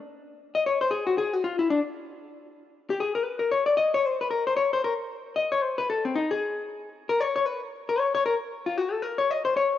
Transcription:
0, 0, Header, 1, 2, 480
1, 0, Start_track
1, 0, Tempo, 262238
1, 181, Time_signature, 4, 2, 24, 8
1, 17907, End_track
2, 0, Start_track
2, 0, Title_t, "Hollow-body jazz guitar"
2, 0, Program_c, 0, 26
2, 1006, Note_on_c, 0, 75, 89
2, 1163, Note_off_c, 0, 75, 0
2, 1215, Note_on_c, 0, 73, 72
2, 1462, Note_off_c, 0, 73, 0
2, 1485, Note_on_c, 0, 72, 85
2, 1643, Note_off_c, 0, 72, 0
2, 1660, Note_on_c, 0, 68, 75
2, 1925, Note_off_c, 0, 68, 0
2, 1951, Note_on_c, 0, 66, 77
2, 2116, Note_off_c, 0, 66, 0
2, 2159, Note_on_c, 0, 68, 86
2, 2439, Note_off_c, 0, 68, 0
2, 2439, Note_on_c, 0, 66, 75
2, 2600, Note_off_c, 0, 66, 0
2, 2636, Note_on_c, 0, 65, 73
2, 2893, Note_off_c, 0, 65, 0
2, 2909, Note_on_c, 0, 64, 76
2, 3075, Note_off_c, 0, 64, 0
2, 3118, Note_on_c, 0, 62, 78
2, 3277, Note_off_c, 0, 62, 0
2, 5313, Note_on_c, 0, 67, 89
2, 5477, Note_off_c, 0, 67, 0
2, 5498, Note_on_c, 0, 68, 74
2, 5760, Note_off_c, 0, 68, 0
2, 5767, Note_on_c, 0, 70, 72
2, 5935, Note_off_c, 0, 70, 0
2, 5935, Note_on_c, 0, 71, 80
2, 6203, Note_off_c, 0, 71, 0
2, 6211, Note_on_c, 0, 70, 74
2, 6405, Note_off_c, 0, 70, 0
2, 6435, Note_on_c, 0, 73, 80
2, 6695, Note_off_c, 0, 73, 0
2, 6702, Note_on_c, 0, 74, 83
2, 6891, Note_off_c, 0, 74, 0
2, 6902, Note_on_c, 0, 75, 93
2, 7186, Note_off_c, 0, 75, 0
2, 7216, Note_on_c, 0, 73, 96
2, 7425, Note_off_c, 0, 73, 0
2, 7425, Note_on_c, 0, 72, 78
2, 7687, Note_off_c, 0, 72, 0
2, 7705, Note_on_c, 0, 71, 71
2, 7871, Note_off_c, 0, 71, 0
2, 7879, Note_on_c, 0, 70, 75
2, 8154, Note_off_c, 0, 70, 0
2, 8179, Note_on_c, 0, 72, 75
2, 8348, Note_off_c, 0, 72, 0
2, 8355, Note_on_c, 0, 73, 88
2, 8632, Note_off_c, 0, 73, 0
2, 8660, Note_on_c, 0, 72, 87
2, 8830, Note_off_c, 0, 72, 0
2, 8864, Note_on_c, 0, 70, 80
2, 9027, Note_off_c, 0, 70, 0
2, 9808, Note_on_c, 0, 75, 82
2, 10079, Note_off_c, 0, 75, 0
2, 10098, Note_on_c, 0, 73, 80
2, 10299, Note_off_c, 0, 73, 0
2, 10299, Note_on_c, 0, 72, 90
2, 10564, Note_off_c, 0, 72, 0
2, 10579, Note_on_c, 0, 71, 91
2, 10750, Note_off_c, 0, 71, 0
2, 10792, Note_on_c, 0, 69, 82
2, 11051, Note_off_c, 0, 69, 0
2, 11071, Note_on_c, 0, 60, 64
2, 11236, Note_off_c, 0, 60, 0
2, 11263, Note_on_c, 0, 63, 84
2, 11526, Note_off_c, 0, 63, 0
2, 11545, Note_on_c, 0, 68, 84
2, 12605, Note_off_c, 0, 68, 0
2, 12982, Note_on_c, 0, 70, 102
2, 13188, Note_off_c, 0, 70, 0
2, 13188, Note_on_c, 0, 73, 93
2, 13444, Note_off_c, 0, 73, 0
2, 13466, Note_on_c, 0, 73, 88
2, 13649, Note_off_c, 0, 73, 0
2, 13649, Note_on_c, 0, 71, 86
2, 13919, Note_off_c, 0, 71, 0
2, 14442, Note_on_c, 0, 70, 90
2, 14632, Note_off_c, 0, 70, 0
2, 14632, Note_on_c, 0, 73, 91
2, 14890, Note_off_c, 0, 73, 0
2, 14912, Note_on_c, 0, 73, 101
2, 15076, Note_off_c, 0, 73, 0
2, 15115, Note_on_c, 0, 70, 95
2, 15274, Note_off_c, 0, 70, 0
2, 15855, Note_on_c, 0, 65, 75
2, 16062, Note_off_c, 0, 65, 0
2, 16062, Note_on_c, 0, 66, 77
2, 16329, Note_off_c, 0, 66, 0
2, 16329, Note_on_c, 0, 69, 85
2, 16515, Note_off_c, 0, 69, 0
2, 16515, Note_on_c, 0, 70, 82
2, 16791, Note_off_c, 0, 70, 0
2, 16806, Note_on_c, 0, 73, 86
2, 17033, Note_off_c, 0, 73, 0
2, 17033, Note_on_c, 0, 75, 100
2, 17286, Note_off_c, 0, 75, 0
2, 17293, Note_on_c, 0, 72, 85
2, 17466, Note_off_c, 0, 72, 0
2, 17509, Note_on_c, 0, 73, 87
2, 17907, Note_off_c, 0, 73, 0
2, 17907, End_track
0, 0, End_of_file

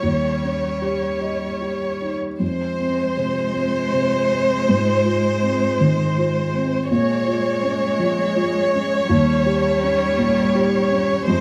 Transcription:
0, 0, Header, 1, 5, 480
1, 0, Start_track
1, 0, Tempo, 792602
1, 17, Time_signature, 3, 2, 24, 8
1, 1457, Tempo, 756620
1, 2897, Tempo, 738007
1, 5297, Tempo, 724638
1, 7310, End_track
2, 0, Start_track
2, 0, Title_t, "Violin section"
2, 0, Program_c, 0, 48
2, 0, Note_on_c, 0, 73, 48
2, 1306, Note_off_c, 0, 73, 0
2, 1456, Note_on_c, 0, 72, 55
2, 4312, Note_off_c, 0, 72, 0
2, 4338, Note_on_c, 0, 73, 64
2, 7190, Note_off_c, 0, 73, 0
2, 7209, Note_on_c, 0, 72, 80
2, 7310, Note_off_c, 0, 72, 0
2, 7310, End_track
3, 0, Start_track
3, 0, Title_t, "Analog synth pad"
3, 0, Program_c, 1, 89
3, 1454, Note_on_c, 1, 65, 57
3, 1455, Note_on_c, 1, 56, 56
3, 1460, Note_on_c, 1, 72, 54
3, 4311, Note_off_c, 1, 56, 0
3, 4311, Note_off_c, 1, 65, 0
3, 4314, Note_off_c, 1, 72, 0
3, 4321, Note_on_c, 1, 65, 62
3, 4322, Note_on_c, 1, 56, 67
3, 4327, Note_on_c, 1, 73, 62
3, 5743, Note_off_c, 1, 65, 0
3, 5744, Note_off_c, 1, 56, 0
3, 5758, Note_on_c, 1, 55, 65
3, 5764, Note_on_c, 1, 63, 62
3, 7206, Note_off_c, 1, 55, 0
3, 7209, Note_off_c, 1, 63, 0
3, 7210, Note_on_c, 1, 65, 70
3, 7211, Note_off_c, 1, 73, 0
3, 7214, Note_on_c, 1, 56, 68
3, 7310, Note_off_c, 1, 56, 0
3, 7310, Note_off_c, 1, 65, 0
3, 7310, End_track
4, 0, Start_track
4, 0, Title_t, "Felt piano"
4, 0, Program_c, 2, 0
4, 0, Control_c, 2, 64, 127
4, 18, Note_on_c, 2, 39, 36
4, 30, Control_c, 2, 64, 0
4, 131, Control_c, 2, 64, 127
4, 262, Note_on_c, 2, 61, 31
4, 494, Note_on_c, 2, 67, 36
4, 642, Note_off_c, 2, 61, 0
4, 733, Note_on_c, 2, 75, 36
4, 881, Note_off_c, 2, 67, 0
4, 977, Note_on_c, 2, 67, 36
4, 1121, Note_off_c, 2, 75, 0
4, 1219, Note_on_c, 2, 63, 30
4, 1363, Note_off_c, 2, 67, 0
4, 1433, Note_off_c, 2, 39, 0
4, 1451, Note_on_c, 2, 41, 45
4, 1457, Note_off_c, 2, 63, 0
4, 1468, Control_c, 2, 64, 0
4, 1570, Control_c, 2, 64, 127
4, 1697, Note_on_c, 2, 60, 44
4, 1941, Note_on_c, 2, 48, 39
4, 2084, Note_off_c, 2, 60, 0
4, 2175, Note_on_c, 2, 60, 43
4, 2325, Note_off_c, 2, 48, 0
4, 2421, Note_on_c, 2, 48, 51
4, 2560, Note_off_c, 2, 60, 0
4, 2668, Note_on_c, 2, 60, 42
4, 2802, Note_off_c, 2, 48, 0
4, 2868, Note_off_c, 2, 41, 0
4, 2901, Note_off_c, 2, 60, 0
4, 2903, Note_on_c, 2, 44, 55
4, 2908, Control_c, 2, 64, 0
4, 3006, Control_c, 2, 64, 127
4, 3142, Note_on_c, 2, 65, 45
4, 3381, Note_on_c, 2, 60, 46
4, 3525, Note_off_c, 2, 65, 0
4, 3630, Note_on_c, 2, 51, 44
4, 3765, Note_off_c, 2, 60, 0
4, 3873, Note_on_c, 2, 65, 51
4, 4009, Note_off_c, 2, 51, 0
4, 4108, Note_on_c, 2, 60, 52
4, 4249, Note_off_c, 2, 65, 0
4, 4315, Note_off_c, 2, 44, 0
4, 4343, Note_off_c, 2, 60, 0
4, 4347, Note_on_c, 2, 46, 59
4, 4350, Control_c, 2, 64, 0
4, 4459, Control_c, 2, 64, 127
4, 4583, Note_on_c, 2, 65, 50
4, 4816, Note_on_c, 2, 61, 53
4, 4964, Note_off_c, 2, 65, 0
4, 5052, Note_on_c, 2, 53, 53
4, 5200, Note_off_c, 2, 61, 0
4, 5292, Note_on_c, 2, 65, 64
4, 5440, Note_off_c, 2, 53, 0
4, 5546, Note_on_c, 2, 61, 56
4, 5680, Note_off_c, 2, 65, 0
4, 5757, Note_off_c, 2, 46, 0
4, 5780, Note_on_c, 2, 39, 65
4, 5782, Note_off_c, 2, 61, 0
4, 5790, Control_c, 2, 64, 0
4, 5899, Control_c, 2, 64, 127
4, 6022, Note_on_c, 2, 67, 54
4, 6263, Note_on_c, 2, 61, 56
4, 6403, Note_off_c, 2, 67, 0
4, 6495, Note_on_c, 2, 46, 59
4, 6644, Note_off_c, 2, 61, 0
4, 6744, Note_on_c, 2, 67, 68
4, 6879, Note_off_c, 2, 46, 0
4, 6981, Note_on_c, 2, 61, 62
4, 7124, Note_off_c, 2, 67, 0
4, 7191, Note_off_c, 2, 39, 0
4, 7219, Note_off_c, 2, 61, 0
4, 7224, Note_on_c, 2, 41, 76
4, 7228, Control_c, 2, 64, 0
4, 7310, Note_off_c, 2, 41, 0
4, 7310, End_track
5, 0, Start_track
5, 0, Title_t, "Cello"
5, 0, Program_c, 3, 42
5, 23, Note_on_c, 3, 55, 45
5, 1310, Note_off_c, 3, 55, 0
5, 1470, Note_on_c, 3, 56, 50
5, 4319, Note_off_c, 3, 56, 0
5, 4336, Note_on_c, 3, 56, 64
5, 5751, Note_off_c, 3, 56, 0
5, 5778, Note_on_c, 3, 55, 77
5, 7190, Note_off_c, 3, 55, 0
5, 7215, Note_on_c, 3, 56, 80
5, 7310, Note_off_c, 3, 56, 0
5, 7310, End_track
0, 0, End_of_file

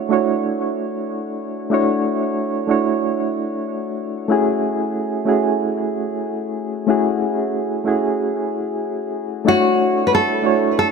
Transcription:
0, 0, Header, 1, 3, 480
1, 0, Start_track
1, 0, Tempo, 645161
1, 1282, Time_signature, 4, 2, 24, 8
1, 8122, End_track
2, 0, Start_track
2, 0, Title_t, "Nylon-string guitar"
2, 0, Program_c, 0, 24
2, 7056, Note_on_c, 0, 66, 89
2, 7452, Note_off_c, 0, 66, 0
2, 7491, Note_on_c, 0, 71, 68
2, 7530, Note_off_c, 0, 71, 0
2, 7549, Note_on_c, 0, 69, 96
2, 8018, Note_off_c, 0, 69, 0
2, 8027, Note_on_c, 0, 69, 93
2, 8088, Note_off_c, 0, 69, 0
2, 8122, End_track
3, 0, Start_track
3, 0, Title_t, "Synth keys"
3, 0, Program_c, 1, 88
3, 0, Control_c, 1, 64, 127
3, 0, Note_on_c, 1, 57, 74
3, 0, Note_on_c, 1, 62, 68
3, 0, Note_on_c, 1, 64, 68
3, 0, Note_on_c, 1, 66, 69
3, 0, Note_on_c, 1, 73, 90
3, 66, Note_off_c, 1, 57, 0
3, 66, Note_on_c, 1, 57, 70
3, 75, Note_off_c, 1, 62, 0
3, 75, Note_on_c, 1, 62, 65
3, 79, Note_off_c, 1, 64, 0
3, 79, Note_on_c, 1, 64, 64
3, 87, Note_off_c, 1, 66, 0
3, 87, Note_on_c, 1, 66, 69
3, 95, Note_off_c, 1, 73, 0
3, 95, Note_on_c, 1, 73, 74
3, 1248, Note_off_c, 1, 57, 0
3, 1253, Note_off_c, 1, 62, 0
3, 1255, Note_off_c, 1, 64, 0
3, 1259, Note_off_c, 1, 66, 0
3, 1262, Note_off_c, 1, 73, 0
3, 1264, Note_on_c, 1, 57, 78
3, 1274, Note_on_c, 1, 62, 72
3, 1279, Note_on_c, 1, 64, 72
3, 1285, Note_on_c, 1, 66, 75
3, 1294, Note_on_c, 1, 73, 89
3, 1967, Note_off_c, 1, 57, 0
3, 1972, Note_off_c, 1, 62, 0
3, 1975, Note_off_c, 1, 64, 0
3, 1978, Note_off_c, 1, 66, 0
3, 1982, Note_off_c, 1, 73, 0
3, 1987, Note_on_c, 1, 57, 69
3, 1995, Note_on_c, 1, 62, 66
3, 2002, Note_on_c, 1, 64, 65
3, 2008, Note_on_c, 1, 66, 65
3, 2017, Note_on_c, 1, 73, 78
3, 3169, Note_off_c, 1, 57, 0
3, 3173, Note_off_c, 1, 62, 0
3, 3176, Note_off_c, 1, 64, 0
3, 3179, Note_off_c, 1, 66, 0
3, 3183, Note_off_c, 1, 73, 0
3, 3186, Note_on_c, 1, 57, 82
3, 3193, Note_on_c, 1, 61, 72
3, 3198, Note_on_c, 1, 64, 74
3, 3207, Note_on_c, 1, 66, 68
3, 3212, Control_c, 1, 64, 0
3, 3212, Note_on_c, 1, 68, 84
3, 3342, Control_c, 1, 64, 127
3, 3888, Note_off_c, 1, 57, 0
3, 3892, Note_off_c, 1, 61, 0
3, 3894, Note_off_c, 1, 64, 0
3, 3898, Note_off_c, 1, 66, 0
3, 3901, Note_off_c, 1, 68, 0
3, 3906, Note_on_c, 1, 57, 76
3, 3911, Note_on_c, 1, 61, 68
3, 3920, Note_on_c, 1, 64, 65
3, 3928, Note_on_c, 1, 66, 67
3, 3933, Note_on_c, 1, 68, 82
3, 5088, Note_off_c, 1, 57, 0
3, 5090, Note_off_c, 1, 61, 0
3, 5095, Note_off_c, 1, 64, 0
3, 5099, Note_off_c, 1, 66, 0
3, 5101, Note_off_c, 1, 68, 0
3, 5109, Note_on_c, 1, 57, 83
3, 5116, Note_on_c, 1, 61, 77
3, 5122, Note_on_c, 1, 64, 74
3, 5130, Note_on_c, 1, 66, 72
3, 5135, Note_on_c, 1, 68, 81
3, 5809, Note_off_c, 1, 57, 0
3, 5813, Note_off_c, 1, 61, 0
3, 5816, Note_off_c, 1, 64, 0
3, 5820, Note_off_c, 1, 66, 0
3, 5822, Note_off_c, 1, 68, 0
3, 5833, Note_on_c, 1, 57, 68
3, 5840, Note_on_c, 1, 61, 63
3, 5846, Note_on_c, 1, 64, 65
3, 5853, Note_on_c, 1, 66, 63
3, 5860, Note_on_c, 1, 68, 78
3, 7012, Note_off_c, 1, 57, 0
3, 7015, Note_off_c, 1, 61, 0
3, 7018, Note_off_c, 1, 64, 0
3, 7021, Note_off_c, 1, 66, 0
3, 7025, Note_off_c, 1, 68, 0
3, 7028, Note_on_c, 1, 57, 82
3, 7036, Note_on_c, 1, 62, 72
3, 7044, Note_on_c, 1, 64, 74
3, 7049, Note_on_c, 1, 66, 75
3, 7051, Control_c, 1, 64, 0
3, 7057, Note_on_c, 1, 73, 90
3, 7193, Control_c, 1, 64, 127
3, 7729, Note_off_c, 1, 57, 0
3, 7733, Note_off_c, 1, 62, 0
3, 7737, Note_off_c, 1, 64, 0
3, 7740, Note_off_c, 1, 66, 0
3, 7743, Note_off_c, 1, 73, 0
3, 7753, Note_on_c, 1, 57, 74
3, 7760, Note_on_c, 1, 62, 66
3, 7766, Note_on_c, 1, 64, 67
3, 7776, Note_on_c, 1, 66, 64
3, 7782, Note_on_c, 1, 73, 80
3, 8122, Note_off_c, 1, 57, 0
3, 8122, Note_off_c, 1, 62, 0
3, 8122, Note_off_c, 1, 64, 0
3, 8122, Note_off_c, 1, 66, 0
3, 8122, Note_off_c, 1, 73, 0
3, 8122, End_track
0, 0, End_of_file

